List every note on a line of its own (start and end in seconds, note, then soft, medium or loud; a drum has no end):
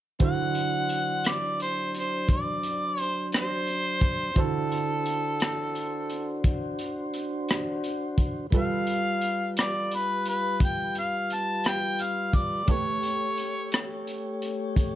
0.19 4.32 D3 soft
0.19 4.32 F#3 soft
0.19 4.31 D4 soft
0.19 4.32 E4 soft
0.19 4.32 F#4 soft
0.19 4.31 C5 soft
0.19 4.33 C5 soft
0.19 1.30 F#5 medium
0.19 kick medium
0.19 closed hi-hat medium
0.55 closed hi-hat soft
0.89 closed hi-hat soft
1.24 1.60 D5 medium
1.24 cross-stick medium
1.24 closed hi-hat medium
1.60 1.92 C5 medium
1.60 closed hi-hat soft
1.94 2.28 C5 medium
1.94 closed hi-hat soft
2.29 3.00 D5 medium
2.29 kick medium
2.29 closed hi-hat medium
2.63 closed hi-hat soft
2.98 3.30 C5 medium
2.98 closed hi-hat soft
3.32 cross-stick medium
3.32 closed hi-hat medium
3.37 4.42 C5 medium
3.67 closed hi-hat soft
4.01 kick medium
4.01 closed hi-hat soft
4.33 8.48 D3 soft
4.33 8.47 D4 soft
4.33 8.48 E4 soft
4.33 8.47 F#4 soft
4.33 8.48 F#4 soft
4.33 8.47 C5 soft
4.33 kick medium
4.33 closed hi-hat medium
4.38 6.46 A4 medium
4.38 8.49 C5 soft
4.72 closed hi-hat soft
5.06 closed hi-hat soft
5.40 cross-stick medium
5.40 closed hi-hat medium
5.75 closed hi-hat soft
6.10 closed hi-hat soft
6.44 kick medium
6.44 closed hi-hat medium
6.79 closed hi-hat soft
7.14 closed hi-hat soft
7.49 cross-stick medium
7.49 closed hi-hat medium
7.84 closed hi-hat soft
8.18 kick medium
8.18 closed hi-hat soft
8.50 12.63 G3 soft
8.50 12.65 G3 soft
8.50 12.64 F4 soft
8.50 12.65 F4 soft
8.50 12.65 A4 soft
8.50 12.63 B4 soft
8.50 kick medium
8.50 closed hi-hat medium
8.55 12.65 B4 soft
8.55 9.54 F5 medium
8.87 closed hi-hat soft
9.21 closed hi-hat soft
9.57 9.96 D5 medium
9.57 cross-stick medium
9.57 closed hi-hat medium
9.91 10.27 B4 medium
9.91 closed hi-hat soft
10.26 10.60 B4 medium
10.26 closed hi-hat soft
10.60 kick medium
10.60 closed hi-hat medium
10.65 10.95 G5 medium
10.95 11.35 F5 medium
10.95 closed hi-hat soft
11.30 11.69 A5 medium
11.30 closed hi-hat soft
11.64 12.03 G5 medium
11.64 cross-stick medium
11.64 closed hi-hat medium
11.99 12.37 F5 medium
11.99 closed hi-hat soft
12.33 12.73 D5 medium
12.33 kick soft
12.33 closed hi-hat soft
12.65 14.95 A3 soft
12.65 14.95 G4 soft
12.65 14.95 C#5 soft
12.65 kick medium
12.65 closed hi-hat medium
12.69 14.95 G4 soft
12.69 14.95 B4 soft
12.69 14.95 C#5 soft
12.69 13.74 C#5 medium
13.03 closed hi-hat soft
13.38 closed hi-hat soft
13.72 cross-stick medium
13.72 closed hi-hat medium
14.07 closed hi-hat soft
14.42 closed hi-hat soft
14.76 kick medium
14.76 closed hi-hat medium